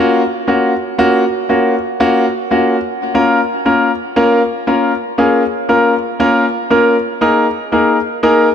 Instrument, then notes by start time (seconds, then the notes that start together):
grand piano
Already playing: A#3 C#4 F4 F#4
0.48 A#3 C#4 F4 F#4
0.98 A#3 C#4 F4 F#4
1.49 A#3 C#4 F4 F#4
2.00 A#3 C#4 F4 F#4
2.51 A#3 C#4 F4 F#4
3.14 A#3 C#4 F4 A#4
3.65 A#3 C#4 F4 A#4
4.16 A#3 C#4 F4 A#4
4.67 A#3 C#4 F4 A#4
5.18 A#3 C#4 F4 G#4
5.69 A#3 C#4 F4 A#4
6.20 A#3 C#4 F4 A#4
6.70 A#3 C#4 F4 A#4
7.21 A#3 D#4 G#4 A#4
7.72 A#3 D#4 G#4 A#4
8.23 A#3 D#4 G#4 A#4